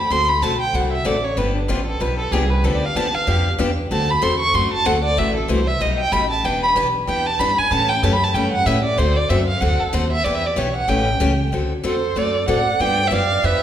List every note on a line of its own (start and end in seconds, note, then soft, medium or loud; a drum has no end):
0.00 0.13 B5 loud
0.10 0.41 D2 medium
0.10 0.30 D3 medium
0.10 0.30 A3 medium
0.10 0.30 C4 medium
0.10 0.30 F#4 medium
0.10 0.30 A4 medium
0.10 0.31 C6 loud
0.29 0.44 B5 medium
0.42 0.72 B1 medium
0.42 0.52 D3 medium
0.42 0.53 A3 medium
0.42 0.53 C4 medium
0.42 0.53 F#4 loud
0.42 0.53 A4 loud
0.42 0.60 A5 medium
0.61 0.76 G5 medium
0.73 1.04 C2 medium
0.73 0.93 D3 medium
0.73 0.93 A3 medium
0.73 0.94 C4 medium
0.73 0.94 F#4 medium
0.73 0.94 A4 medium
0.73 0.92 F#5 medium
0.92 1.07 E5 medium
1.05 1.36 A1 medium
1.05 1.15 D3 medium
1.05 1.16 A3 medium
1.05 1.16 C4 medium
1.05 1.16 F#4 medium
1.05 1.16 A4 medium
1.05 1.25 D5 medium
1.24 1.39 C#5 medium
1.37 1.68 G1 medium
1.37 1.56 D3 medium
1.37 1.56 F3 medium
1.37 1.57 B3 medium
1.37 1.57 D4 medium
1.37 1.57 G4 medium
1.37 1.55 B4 medium
1.56 1.70 D4 soft
1.68 1.99 A1 medium
1.68 1.79 D3 medium
1.68 1.79 F3 medium
1.68 1.80 B3 medium
1.68 1.80 D4 loud
1.68 1.86 F4 medium
1.68 1.80 G4 medium
1.86 2.03 A4 medium
2.00 2.31 B1 medium
2.00 2.20 D3 medium
2.00 2.20 F3 medium
2.00 2.20 B3 medium
2.00 2.20 D4 medium
2.00 2.20 G4 medium
2.00 2.18 B4 medium
2.19 2.34 A4 medium
2.31 2.62 C2 loud
2.31 2.43 D3 medium
2.31 2.43 F3 medium
2.31 2.43 B3 medium
2.31 2.43 D4 loud
2.31 2.43 G4 medium
2.31 2.51 G#4 medium
2.50 2.66 B4 medium
2.63 2.94 D2 medium
2.63 2.83 D3 medium
2.63 2.84 F3 medium
2.63 2.84 B3 medium
2.63 2.84 D4 medium
2.63 2.84 G4 medium
2.63 2.77 A4 medium
2.75 2.87 D5 medium
2.86 2.98 F5 medium
2.95 3.13 E2 medium
2.95 3.06 D3 medium
2.95 3.07 F3 medium
2.95 3.07 B3 loud
2.95 3.07 D4 medium
2.95 3.07 G4 medium
2.95 3.16 A5 loud
3.14 3.46 F5 loud
3.14 muted upright bass stroke soft
3.27 3.58 F2 medium
3.27 3.46 D3 medium
3.27 3.47 F3 medium
3.27 3.47 B3 medium
3.27 3.47 D4 medium
3.27 3.47 G4 medium
3.58 3.90 E2 loud
3.58 3.69 D3 medium
3.58 3.69 F3 medium
3.58 3.70 B3 loud
3.58 3.70 D4 loud
3.58 3.70 G4 loud
3.91 4.21 D2 medium
3.91 4.10 D3 medium
3.91 4.10 A3 medium
3.91 4.11 C4 medium
3.91 4.11 F#4 medium
3.91 4.11 A4 medium
3.91 4.12 A5 medium
4.10 4.24 B5 loud
4.22 4.53 E2 medium
4.22 4.32 D3 medium
4.22 4.32 A3 medium
4.22 4.33 C4 medium
4.22 4.33 F#4 medium
4.22 4.33 A4 loud
4.22 4.39 C6 medium
4.40 4.56 C#6 loud
4.54 4.71 F#2 medium
4.54 4.73 D3 medium
4.54 4.74 A3 medium
4.54 4.74 C4 medium
4.54 4.74 F#4 medium
4.54 4.74 A4 medium
4.54 4.73 C6 medium
4.73 4.88 A5 loud
4.73 muted upright bass stroke soft
4.85 5.17 D2 loud
4.85 4.96 D3 medium
4.85 4.96 A3 loud
4.85 4.96 C4 medium
4.85 4.96 F#4 loud
4.85 4.97 A4 loud
4.85 5.04 F#5 medium
5.04 5.20 D5 loud
5.17 5.48 A1 medium
5.17 5.37 C3 medium
5.17 5.37 E3 medium
5.17 5.37 A3 medium
5.17 5.37 E4 medium
5.17 5.37 F#4 medium
5.17 5.36 E5 loud
5.36 5.50 A4 medium
5.48 5.79 C2 medium
5.48 5.59 C3 medium
5.48 5.60 E3 medium
5.48 5.60 A3 loud
5.48 5.60 E4 medium
5.48 5.60 F#4 medium
5.48 5.69 C5 medium
5.67 5.83 E5 loud
5.80 6.11 B1 medium
5.80 6.00 B2 medium
5.80 6.00 G3 medium
5.80 6.01 A3 medium
5.80 6.01 D#4 medium
5.80 6.01 G4 medium
5.80 5.99 D#5 medium
6.00 6.14 G5 loud
6.12 6.43 A1 medium
6.12 6.23 B2 medium
6.12 6.23 G3 medium
6.12 6.23 A3 loud
6.12 6.23 D#4 loud
6.12 6.23 G4 medium
6.12 6.30 B5 loud
6.31 6.46 A5 medium
6.44 6.75 E1 medium
6.44 6.64 E3 medium
6.44 6.64 B3 medium
6.44 6.64 D4 medium
6.44 6.64 G4 medium
6.44 6.62 G5 medium
6.63 6.71 B5 loud
6.75 7.06 B1 medium
6.75 6.86 E3 medium
6.75 6.87 B3 medium
6.75 6.87 D4 medium
6.75 6.87 G4 loud
7.07 7.38 E2 medium
7.07 7.27 E3 medium
7.07 7.27 B3 medium
7.07 7.27 D4 medium
7.07 7.28 G4 medium
7.07 7.28 G5 medium
7.26 7.41 A5 loud
7.39 7.56 G2 medium
7.39 7.50 E3 medium
7.39 7.50 B3 medium
7.39 7.50 D4 loud
7.39 7.51 G4 loud
7.39 7.60 B5 loud
7.58 7.73 G#5 loud
7.58 muted upright bass stroke soft
7.71 8.02 A2 medium
7.71 7.90 C#3 medium
7.71 7.91 E3 medium
7.71 7.91 A3 medium
7.71 7.91 C#4 medium
7.71 7.91 G4 medium
7.71 7.91 A5 loud
7.89 8.05 G5 loud
8.03 8.33 F#2 medium
8.03 8.13 C#3 medium
8.03 8.14 E3 medium
8.03 8.14 A3 medium
8.03 8.14 C#4 loud
8.03 8.14 G4 loud
8.03 8.14 A5 medium
8.13 8.25 B5 loud
8.24 8.36 A5 medium
8.34 8.65 G2 medium
8.34 8.54 C#3 medium
8.34 8.54 E3 medium
8.34 8.55 A3 medium
8.34 8.55 C#4 medium
8.34 8.55 G4 medium
8.34 8.51 G5 medium
8.52 8.68 F#5 loud
8.66 8.97 A2 loud
8.66 8.77 C#3 medium
8.66 8.77 E3 medium
8.66 8.77 A3 loud
8.66 8.77 C#4 loud
8.66 8.77 G4 loud
8.66 8.84 E5 medium
8.85 9.00 D5 medium
8.98 9.29 D2 medium
8.98 9.17 D3 medium
8.98 9.18 A3 medium
8.98 9.18 C4 medium
8.98 9.18 F#4 medium
8.98 9.18 A4 medium
8.98 9.18 C5 medium
9.16 9.31 D5 loud
9.30 9.60 F#2 medium
9.30 9.40 D3 medium
9.30 9.40 A3 medium
9.30 9.40 C4 loud
9.30 9.41 F#4 medium
9.30 9.41 A4 medium
9.30 9.47 E5 medium
9.48 9.62 F5 medium
9.61 9.79 D2 loud
9.61 9.81 D3 medium
9.61 9.81 A3 medium
9.61 9.81 C4 medium
9.61 9.81 F#4 medium
9.61 9.81 A4 medium
9.61 9.81 F#5 medium
9.80 9.95 A4 medium
9.80 muted upright bass stroke soft
9.93 10.24 D#2 loud
9.93 10.03 D3 medium
9.93 10.04 A3 medium
9.93 10.04 C4 medium
9.93 10.04 F#4 loud
9.93 10.04 A4 loud
9.93 10.11 C5 medium
10.12 10.26 E5 loud
10.24 10.56 E2 medium
10.24 10.44 E3 medium
10.24 10.45 B3 medium
10.24 10.45 D4 medium
10.24 10.45 G4 medium
10.24 10.36 D5 medium
10.35 10.48 E5 loud
10.46 10.59 D5 medium
10.56 10.87 B1 loud
10.56 10.67 E3 medium
10.56 10.67 B3 medium
10.56 10.68 D4 medium
10.56 10.68 G4 loud
10.56 10.76 C#5 medium
10.76 10.90 F#5 loud
10.88 11.19 A1 loud
10.88 11.08 C#3 medium
10.88 11.08 E3 medium
10.88 11.08 A3 medium
10.88 11.08 C#4 medium
10.88 11.08 G4 medium
10.88 11.45 G5 medium
11.20 11.51 C#2 loud
11.20 11.31 C#3 medium
11.20 11.31 E3 loud
11.20 11.31 A3 medium
11.20 11.31 C#4 loud
11.20 11.31 G4 loud
11.52 11.83 D2 medium
11.52 11.72 D3 medium
11.52 11.72 A3 medium
11.52 11.72 C4 medium
11.52 11.72 F#4 medium
11.52 11.72 A4 medium
11.84 12.15 E2 medium
11.84 11.94 D3 medium
11.84 11.94 A3 medium
11.84 11.95 C4 medium
11.84 11.95 F#4 medium
11.84 12.17 A4 medium
11.84 11.95 A4 medium
11.84 12.19 C5 medium
12.16 12.46 F#2 medium
12.16 12.35 D3 medium
12.16 12.35 A3 medium
12.16 12.36 C4 medium
12.16 12.36 F#4 medium
12.16 12.48 A4 medium
12.16 12.36 A4 medium
12.16 12.48 D5 loud
12.48 12.78 A2 loud
12.48 12.58 D3 medium
12.48 12.58 A3 medium
12.48 12.58 C4 medium
12.48 12.59 F#4 medium
12.48 12.59 A4 medium
12.48 12.80 D5 medium
12.48 12.83 F#5 loud
12.79 13.10 G2 medium
12.79 12.99 D3 medium
12.79 12.99 F3 medium
12.79 12.99 B3 medium
12.79 12.99 D4 medium
12.79 13.00 G4 medium
12.79 13.05 D5 medium
12.79 13.09 G5 loud
13.04 13.13 C5 medium
13.04 13.15 E5 medium
13.11 13.42 F#2 medium
13.11 13.21 D3 medium
13.11 13.21 F3 medium
13.11 13.22 B3 medium
13.11 13.22 D4 medium
13.11 13.22 G4 loud
13.11 13.46 D5 medium
13.11 13.46 F5 medium
13.43 13.60 F2 medium
13.43 13.62 D3 medium
13.43 13.63 F3 medium
13.43 13.63 B3 medium
13.43 13.63 D4 medium
13.43 13.63 G4 medium
13.43 13.63 B4 medium
13.43 13.63 E5 medium